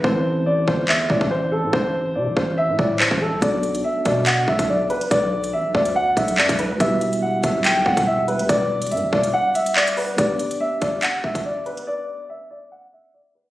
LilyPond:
<<
  \new Staff \with { instrumentName = "Grand piano" } { \time 4/4 \key g \major \tempo 4 = 142 c''4 d''8 c''8 e''8 d''8 c''8 a'8 | c''4 d''8 c''8 e''8 d''8 c''8 a'8 | d''4 e''8 d''8 fis''8 e''8 d''8 b'8 | d''4 e''8 d''8 fis''8 e''8 d''8 b'8 |
e''4 fis''8 e''8 g''8 fis''8 e''8 b'8 | d''4 e''8 d''8 fis''8 e''8 d''8 b'8 | d''4 e''8 d''8 fis''8 e''8 d''8 b'8 | d''4 e''8 d''8 fis''8 e''8 d''8 b'8 | }
  \new Staff \with { instrumentName = "Tine electric piano" } { \time 4/4 \key g \major <e a c' e' a'>1~ | <e a c' e' a'>1 | <a b d' fis' a'>1~ | <a b d' fis' a'>1 |
<g b e' fis' g'>1~ | <g b e' fis' g'>1 | <a b d' g'>1~ | <a b d' g'>1 | }
  \new Staff \with { instrumentName = "808-style bass" } { \clef bass \time 4/4 \key g \major a,,4. g,,8 e,8 a,16 a,,4 a,16 | a,,4 c16 a,,16 a,,8. a,16 a,8. a,,8 c,16 | b,,4 r8 b,4 b,,16 b,,8. r8 | b,,4 a,,16 b,,16 d,4 b,,8 fis,16 b,,8 d,16 |
e,,4. d,,8 b,,8 e,16 e,,4 e,16 | e,,4 g,16 e,,16 e,,8 r2 | r1 | r1 | }
  \new DrumStaff \with { instrumentName = "Drums" } \drummode { \time 4/4 bd4 r8 bd8 hc8 bd16 bd16 r4 | bd4 r8 bd8 r8 bd8 hc16 bd8. | <hh bd>8 hh16 hh16 r8 <hh bd>8 <hc hh>8 bd16 <hh bd>16 r8 hh16 hh16 | <hh bd>8. hh16 r8 bd16 hh16 r8 <hh bd>16 hh16 hc16 <hh bd>16 hh8 |
<hh bd>8 hh16 hh16 r8 <hh bd>8 <hc hh>8 bd16 <hh bd>16 r8 hh16 hh16 | <hh bd>8. hh32 hh32 hh32 hh16. bd16 hh16 r8 hh16 hh16 hc16 hh16 hho8 | <hh bd>8 hh16 hh16 r8 <hh bd>8 <hc hh>8 bd16 <hh bd>16 r8 hh16 hh16 | r4 r4 r4 r4 | }
>>